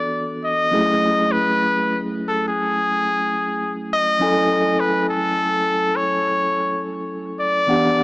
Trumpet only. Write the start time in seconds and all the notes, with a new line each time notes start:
Already playing: D5
0.45 D#5
1.32 B4
2.28 A4
2.48 G#4
3.93 D#5
4.80 B4
5.09 A4
5.96 C#5
7.41 D5